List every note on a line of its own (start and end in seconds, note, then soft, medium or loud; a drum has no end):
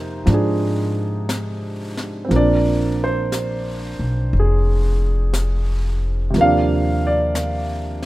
0.00 0.22 F2 medium
0.00 2.31 C3 soft
0.00 0.24 F3 soft
0.00 2.31 A#3 soft
0.00 2.31 D#4 soft
0.00 0.25 C5 medium
0.00 2.32 D#5 medium
0.26 2.27 G#2 medium
0.26 2.27 F3 soft
0.26 2.32 D4 soft
0.26 brush sweep soft
0.26 snare soft
0.34 0.97 G#4 soft
1.29 brush sweep soft
1.29 snare soft
1.29 hi-hat pedal soft
1.97 snare soft
2.25 6.32 F3 soft
2.25 6.32 C4 soft
2.31 3.96 A#1 medium
2.31 6.36 A#3 soft
2.31 brush sweep soft
2.31 snare soft
2.36 6.38 D4 soft
2.36 3.00 D5 medium
3.04 4.31 C5 medium
3.32 brush sweep soft
3.32 snare soft
3.32 hi-hat pedal soft
3.99 4.30 B1 medium
4.33 6.31 F1 medium
4.33 brush sweep soft
4.40 5.02 G#4 soft
5.34 brush sweep soft
5.34 snare soft
5.34 hi-hat pedal soft
6.30 8.05 C3 soft
6.30 8.05 F3 soft
6.30 brush sweep soft
6.30 snare soft
6.36 8.05 D#2 medium
6.36 8.05 A#3 soft
6.41 8.05 D4 soft
6.41 7.04 F5 medium
7.07 8.05 D5 medium
7.35 brush sweep soft
7.35 snare soft
7.35 hi-hat pedal soft
8.02 snare soft